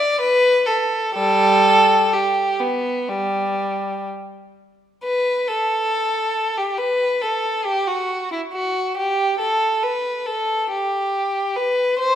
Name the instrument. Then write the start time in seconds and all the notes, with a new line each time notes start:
violin
Already playing: D5
0.21 B4
0.66 A4
1.14 G3 A4
2.13 G4
2.60 B3
3.09 G3
5.03 B4
5.48 A4
6.57 G4
6.78 B4
7.22 A4
7.65 G4
7.88 F#4
8.32 E4
8.53 F#4
8.97 G4
9.39 A4
9.83 B4
10.26 A4
10.71 G4
11.56 B4
11.99 C5